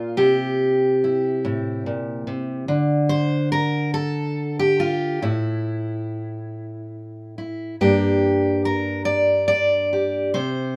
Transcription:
0, 0, Header, 1, 2, 480
1, 0, Start_track
1, 0, Tempo, 836820
1, 99, Time_signature, 6, 3, 24, 8
1, 2018, Tempo, 851064
1, 6102, End_track
2, 0, Start_track
2, 0, Title_t, "Steel-string acoustic guitar"
2, 0, Program_c, 0, 25
2, 0, Note_on_c, 0, 46, 59
2, 0, Note_on_c, 0, 65, 84
2, 98, Note_on_c, 0, 67, 78
2, 101, Note_off_c, 0, 65, 0
2, 101, Note_on_c, 0, 48, 69
2, 104, Note_off_c, 0, 46, 0
2, 596, Note_on_c, 0, 64, 46
2, 829, Note_on_c, 0, 45, 64
2, 1064, Note_off_c, 0, 45, 0
2, 1068, Note_on_c, 0, 46, 59
2, 1296, Note_off_c, 0, 48, 0
2, 1302, Note_on_c, 0, 48, 59
2, 1303, Note_off_c, 0, 46, 0
2, 1536, Note_off_c, 0, 48, 0
2, 1537, Note_off_c, 0, 67, 0
2, 1539, Note_on_c, 0, 50, 73
2, 1556, Note_off_c, 0, 64, 0
2, 1775, Note_on_c, 0, 72, 97
2, 2016, Note_off_c, 0, 72, 0
2, 2018, Note_on_c, 0, 70, 98
2, 2253, Note_off_c, 0, 70, 0
2, 2255, Note_on_c, 0, 69, 96
2, 2619, Note_off_c, 0, 69, 0
2, 2625, Note_on_c, 0, 67, 89
2, 2740, Note_on_c, 0, 65, 83
2, 2954, Note_off_c, 0, 50, 0
2, 2978, Note_off_c, 0, 65, 0
2, 2980, Note_on_c, 0, 64, 68
2, 2984, Note_off_c, 0, 67, 0
2, 2984, Note_on_c, 0, 45, 68
2, 4187, Note_off_c, 0, 64, 0
2, 4196, Note_on_c, 0, 64, 43
2, 4402, Note_off_c, 0, 45, 0
2, 4405, Note_off_c, 0, 64, 0
2, 4438, Note_on_c, 0, 43, 67
2, 4439, Note_on_c, 0, 67, 80
2, 4441, Note_on_c, 0, 58, 46
2, 4446, Note_on_c, 0, 62, 46
2, 4911, Note_off_c, 0, 67, 0
2, 4913, Note_on_c, 0, 70, 85
2, 5137, Note_off_c, 0, 70, 0
2, 5139, Note_on_c, 0, 74, 101
2, 5373, Note_off_c, 0, 74, 0
2, 5379, Note_on_c, 0, 74, 102
2, 5633, Note_on_c, 0, 67, 47
2, 5837, Note_off_c, 0, 67, 0
2, 5838, Note_off_c, 0, 58, 0
2, 5858, Note_off_c, 0, 74, 0
2, 5865, Note_off_c, 0, 43, 0
2, 5865, Note_on_c, 0, 72, 83
2, 5868, Note_on_c, 0, 48, 74
2, 5882, Note_off_c, 0, 62, 0
2, 6102, Note_off_c, 0, 48, 0
2, 6102, Note_off_c, 0, 72, 0
2, 6102, End_track
0, 0, End_of_file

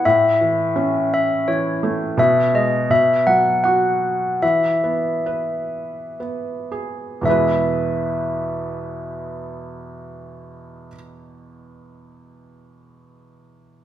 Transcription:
0, 0, Header, 1, 3, 480
1, 0, Start_track
1, 0, Key_signature, 4, "major"
1, 0, Tempo, 710900
1, 34, Time_signature, 3, 2, 24, 8
1, 1474, Tempo, 731707
1, 2434, Tempo, 783290
1, 2914, Tempo, 841515
1, 3394, Tempo, 937500
1, 3874, Tempo, 1056338
1, 4354, Tempo, 1104972
1, 7212, End_track
2, 0, Start_track
2, 0, Title_t, "Handbells"
2, 0, Program_c, 0, 14
2, 37, Note_on_c, 0, 76, 88
2, 760, Note_off_c, 0, 76, 0
2, 768, Note_on_c, 0, 76, 80
2, 985, Note_off_c, 0, 76, 0
2, 998, Note_on_c, 0, 73, 71
2, 1330, Note_off_c, 0, 73, 0
2, 1481, Note_on_c, 0, 76, 82
2, 1715, Note_on_c, 0, 75, 71
2, 1719, Note_off_c, 0, 76, 0
2, 1950, Note_on_c, 0, 76, 81
2, 1956, Note_off_c, 0, 75, 0
2, 2185, Note_on_c, 0, 78, 81
2, 2197, Note_off_c, 0, 76, 0
2, 2421, Note_off_c, 0, 78, 0
2, 2429, Note_on_c, 0, 78, 73
2, 2911, Note_on_c, 0, 76, 72
2, 2924, Note_off_c, 0, 78, 0
2, 4088, Note_off_c, 0, 76, 0
2, 4349, Note_on_c, 0, 76, 64
2, 5934, Note_off_c, 0, 76, 0
2, 7212, End_track
3, 0, Start_track
3, 0, Title_t, "Felt piano"
3, 0, Program_c, 1, 0
3, 0, Control_c, 1, 64, 127
3, 37, Note_on_c, 1, 45, 66
3, 42, Control_c, 1, 64, 0
3, 177, Control_c, 1, 64, 127
3, 277, Note_on_c, 1, 52, 46
3, 512, Note_on_c, 1, 61, 45
3, 989, Note_off_c, 1, 52, 0
3, 999, Note_on_c, 1, 52, 49
3, 1236, Note_on_c, 1, 57, 47
3, 1445, Note_off_c, 1, 61, 0
3, 1448, Note_off_c, 1, 45, 0
3, 1462, Note_off_c, 1, 52, 0
3, 1467, Note_off_c, 1, 57, 0
3, 1468, Note_on_c, 1, 47, 70
3, 1482, Control_c, 1, 64, 0
3, 1599, Control_c, 1, 64, 127
3, 1707, Note_on_c, 1, 56, 43
3, 1929, Note_off_c, 1, 47, 0
3, 1938, Note_off_c, 1, 56, 0
3, 1945, Note_on_c, 1, 47, 53
3, 1955, Control_c, 1, 64, 0
3, 2082, Control_c, 1, 64, 127
3, 2186, Note_on_c, 1, 54, 43
3, 2437, Note_on_c, 1, 66, 49
3, 2888, Note_off_c, 1, 47, 0
3, 2891, Note_off_c, 1, 54, 0
3, 2900, Note_off_c, 1, 66, 0
3, 2909, Note_on_c, 1, 52, 57
3, 2919, Control_c, 1, 64, 0
3, 3018, Control_c, 1, 64, 127
3, 3145, Note_on_c, 1, 59, 44
3, 3389, Note_on_c, 1, 71, 43
3, 3861, Note_off_c, 1, 59, 0
3, 3869, Note_on_c, 1, 59, 37
3, 4105, Note_on_c, 1, 68, 43
3, 4331, Note_on_c, 1, 40, 51
3, 4333, Note_off_c, 1, 71, 0
3, 4334, Note_off_c, 1, 52, 0
3, 4337, Note_off_c, 1, 59, 0
3, 4338, Note_on_c, 1, 47, 44
3, 4344, Note_off_c, 1, 68, 0
3, 4346, Note_on_c, 1, 56, 40
3, 4352, Note_on_c, 1, 59, 39
3, 4359, Control_c, 1, 64, 0
3, 4360, Note_on_c, 1, 64, 45
3, 4368, Note_on_c, 1, 71, 53
3, 4436, Control_c, 1, 64, 127
3, 5916, Note_off_c, 1, 40, 0
3, 5923, Note_off_c, 1, 47, 0
3, 5931, Note_off_c, 1, 56, 0
3, 5936, Note_off_c, 1, 59, 0
3, 5945, Note_off_c, 1, 64, 0
3, 5952, Note_off_c, 1, 71, 0
3, 7212, End_track
0, 0, End_of_file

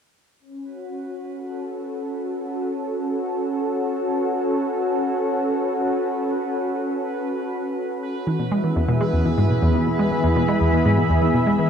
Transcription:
0, 0, Header, 1, 4, 480
1, 0, Start_track
1, 0, Key_signature, 3, "minor"
1, 0, Tempo, 491803
1, 391, Time_signature, 4, 2, 24, 8
1, 11418, End_track
2, 0, Start_track
2, 0, Title_t, "Synth texture"
2, 0, Program_c, 0, 99
2, 393, Note_on_c, 0, 71, 76
2, 11418, Note_off_c, 0, 71, 0
2, 11418, End_track
3, 0, Start_track
3, 0, Title_t, "Analog synth pad"
3, 0, Program_c, 1, 89
3, 391, Note_on_c, 1, 61, 79
3, 625, Note_on_c, 1, 66, 80
3, 1312, Note_on_c, 1, 69, 84
3, 8071, Note_off_c, 1, 69, 0
3, 8071, Note_on_c, 1, 52, 66
3, 8280, Note_on_c, 1, 76, 83
3, 8303, Note_on_c, 1, 59, 69
3, 8432, Note_on_c, 1, 68, 79
3, 9086, Note_on_c, 1, 83, 66
3, 9502, Note_off_c, 1, 66, 0
3, 9565, Note_off_c, 1, 61, 0
3, 11418, Note_off_c, 1, 52, 0
3, 11418, Note_off_c, 1, 59, 0
3, 11418, Note_off_c, 1, 68, 0
3, 11418, Note_off_c, 1, 76, 0
3, 11418, Note_off_c, 1, 83, 0
3, 11418, End_track
4, 0, Start_track
4, 0, Title_t, "Synth arpeggio sound"
4, 0, Program_c, 2, 84
4, 8071, Note_on_c, 2, 52, 77
4, 8107, Note_off_c, 2, 52, 0
4, 8191, Note_on_c, 2, 47, 68
4, 8227, Note_off_c, 2, 47, 0
4, 8311, Note_on_c, 2, 56, 90
4, 8401, Note_off_c, 2, 56, 0
4, 8431, Note_on_c, 2, 52, 71
4, 8467, Note_off_c, 2, 52, 0
4, 8551, Note_on_c, 2, 40, 93
4, 8587, Note_off_c, 2, 40, 0
4, 8671, Note_on_c, 2, 47, 95
4, 8761, Note_off_c, 2, 47, 0
4, 8791, Note_on_c, 2, 56, 92
4, 8851, Note_off_c, 2, 56, 0
4, 8913, Note_on_c, 2, 40, 68
4, 8972, Note_off_c, 2, 40, 0
4, 9032, Note_on_c, 2, 40, 73
4, 9092, Note_off_c, 2, 40, 0
4, 9151, Note_on_c, 2, 44, 90
4, 9241, Note_off_c, 2, 44, 0
4, 9272, Note_on_c, 2, 47, 70
4, 9331, Note_off_c, 2, 47, 0
4, 9393, Note_on_c, 2, 40, 95
4, 9452, Note_off_c, 2, 40, 0
4, 9512, Note_on_c, 2, 52, 74
4, 9548, Note_off_c, 2, 52, 0
4, 9632, Note_on_c, 2, 47, 69
4, 9668, Note_off_c, 2, 47, 0
4, 9752, Note_on_c, 2, 56, 92
4, 9842, Note_off_c, 2, 56, 0
4, 9872, Note_on_c, 2, 52, 76
4, 9908, Note_off_c, 2, 52, 0
4, 9992, Note_on_c, 2, 40, 95
4, 10028, Note_off_c, 2, 40, 0
4, 10111, Note_on_c, 2, 47, 90
4, 10201, Note_off_c, 2, 47, 0
4, 10231, Note_on_c, 2, 56, 96
4, 10291, Note_off_c, 2, 56, 0
4, 10352, Note_on_c, 2, 40, 69
4, 10412, Note_off_c, 2, 40, 0
4, 10471, Note_on_c, 2, 40, 77
4, 10531, Note_off_c, 2, 40, 0
4, 10593, Note_on_c, 2, 44, 95
4, 10682, Note_off_c, 2, 44, 0
4, 10711, Note_on_c, 2, 47, 71
4, 10771, Note_off_c, 2, 47, 0
4, 10831, Note_on_c, 2, 40, 92
4, 10891, Note_off_c, 2, 40, 0
4, 10950, Note_on_c, 2, 52, 74
4, 10987, Note_off_c, 2, 52, 0
4, 11070, Note_on_c, 2, 47, 73
4, 11107, Note_off_c, 2, 47, 0
4, 11191, Note_on_c, 2, 56, 91
4, 11281, Note_off_c, 2, 56, 0
4, 11310, Note_on_c, 2, 52, 72
4, 11347, Note_off_c, 2, 52, 0
4, 11418, End_track
0, 0, End_of_file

